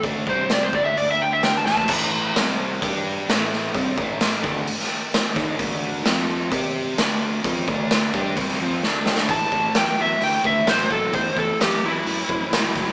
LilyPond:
<<
  \new Staff \with { instrumentName = "Electric slide guitar" } { \time 4/4 \key d \major \tempo 4 = 130 r8 c''8 d''16 c''16 d''16 e''16 d''16 e''16 g''16 e''16 g''16 a''16 a''8 | r1 | r1 | r1 |
r1 | a''4 g''8 e''8 g''8 e''8 c''8 a'8 | c''8 a'8 g'8 e'2~ e'8 | }
  \new Staff \with { instrumentName = "Overdriven electric guitar" } { \clef bass \time 4/4 \key d \major <d a d'>8 <c g c'>4 <d a d'>2 <a, e a>8 | <a, e a>4 <c g c'>4 <g d' g'>4 <a, e a>4 | <c g c'>8 <a, e a>4 <d a d'>8 r4. <dis bes dis'>8 | <d a d'>4 <f c' f'>4 <c' g' c''>4 <d a d'>4 |
<f c' f'>8 <d a d'>4 <g d' g'>8 <c g c'>8 <f c' f'>8 <d a d'>4 | <a, e>8 <a, e>8 <a, fis>8 <a, fis>8 <a, e>8 <a, e>8 <a, fis>8 <a, fis>8 | <a, e>8 <a, e>8 <a, fis>8 <a, fis>8 <a, e>8 <a, e>8 <a, fis>8 <a, fis>8 | }
  \new Staff \with { instrumentName = "Fingered electric bass" } { \clef bass \time 4/4 \key d \major d,8 c,4 d,2 a,,8 | a,,4 c,4 g,4 a,,4 | c,8 a,,4 d,8 r4. dis,8 | d,4 f,4 c4 d,4 |
f,8 d,4 g,8 c,8 f,8 d,4 | a,,8 a,,8 e,8 e,8 d,8 d,8 a,,8 a,,8 | e,8 e,8 e,8 e,8 fis,8 fis,8 cis,8 cis,8 | }
  \new DrumStaff \with { instrumentName = "Drums" } \drummode { \time 4/4 <hho bd>8 bd8 <hho sn>8 bd8 hho4 <hho sn>8 sn16 bd16 | <cymc bd>4 <hho sn>4 <hho bd>4 <hho sn>8 sn8 | <hho bd>8 bd8 <hho sn>8 bd8 hho16 sn8. <hho sn>8 <bd sn>8 | <hho bd>4 <hho sn>4 <hho bd>4 <hho sn>4 |
<hho bd>8 bd8 <hho sn>8 bd8 <hho bd>16 sn8. sn8 sn16 sn16 | <hho bd>8 bd8 <hho sn>4 hho8 bd8 <hho sn>8 bd8 | <hho bd>8 bd8 <hho sn>4 hho8 bd8 <hho sn>8 <bd sn>8 | }
>>